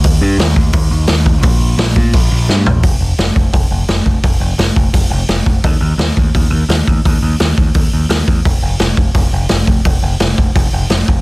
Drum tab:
HH |o-o-o-o-|o-o-o---|o-o-o-o-|o-o-o-o-|
SD |--o---o-|--o---o-|--o---o-|--o---o-|
FT |--------|-------o|--------|--------|
BD |o--oo--o|o--oo---|o--oo--o|o--oo--o|

HH |o-o-o-o-|o-o-o-o-|o-o-o-o-|o-o-o-o-|
SD |--o---o-|--o---o-|--o---o-|--o---o-|
FT |--------|--------|--------|--------|
BD |o--oo--o|o--oo--o|o--oo--o|o--oo--o|